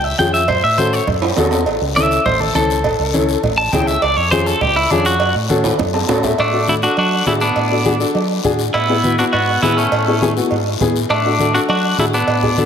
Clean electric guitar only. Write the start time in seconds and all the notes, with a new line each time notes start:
0.04 E5
0.19 G5
0.34 E5
0.48 C5
0.64 E5
0.78 C5
0.93 C#5
1.96 E5
2.26 C5
2.40 A4
2.55 A4
3.58 A5
3.72 G5
3.87 E5
4.02 D5
4.17 C#5
4.31 C5
4.46 A4
4.61 G4
4.76 E4
4.91 D4
5.06 F#4
6.40 A3 D4
6.69 A3 E4
6.83 D4 F#4
6.98 D4 F#4
7.27 A3 E4
7.41 B3 D4
8.74 B3 E4
9.19 D4 F#4
9.33 B3 F#4
9.62 B3 E4
9.77 A3 C#4
11.10 A3 D4
11.54 D4 F#4
11.70 D4 F#4
11.99 A3 E4
12.14 B3 D4